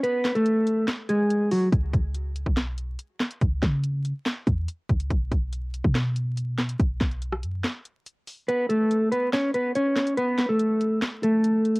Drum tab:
HH |x-xxx-x-x-x-x-o-|x-x-x-x-x-x-x-xx|x-x-x-x-x-x-x-xx|x-x-x-x-x-x-x-xx|
CP |--x-----x-------|--------x-----x-|--x-----x-------|--------x-----x-|
SD |--o-----o-------|--------o-----o-|--o-----o-------|--------o-----o-|
BD |----------------|o-o----o--------|o-o-------o---o-|o-o----o--------|

HH |x-xxx-x-x-x-x-o-|x-x-x-x-x-x-x-xx|x-x-x-x-x-x-x-xx|
CP |--x-----x-------|--------x-----x-|--x-----x-------|
SD |--o--r--o-------|--------o-----o-|--o-----o-------|
BD |o-o-------------|----------------|----------------|